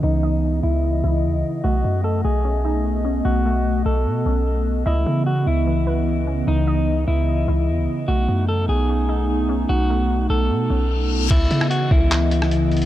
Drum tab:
CC |--------------------------------|--------------------------------|--------------------------------|--------------------------------|
HH |--------------------------------|--------------------------------|--------------------------------|--------------------------------|
CP |--------------------------------|--------------------------------|--------------------------------|--------------------------------|
SD |--------------------------------|--------------------------------|--------------------------------|--------------------------------|
BD |--------------------------------|--------------------------------|--------------------------------|--------------------------------|

CC |--------------------------------|--------------------------------|--------------------------------|x-------------------------------|
HH |--------------------------------|--------------------------------|--------------------------------|x---x---x-------x---x---x---xxx-|
CP |--------------------------------|--------------------------------|--------------------------------|----------------x---------------|
SD |--------------------------------|--------------------------------|--------------------------------|------r---------------r---------|
BD |--------------------------------|--------------------------------|--------------------------------|o-----------o-------------------|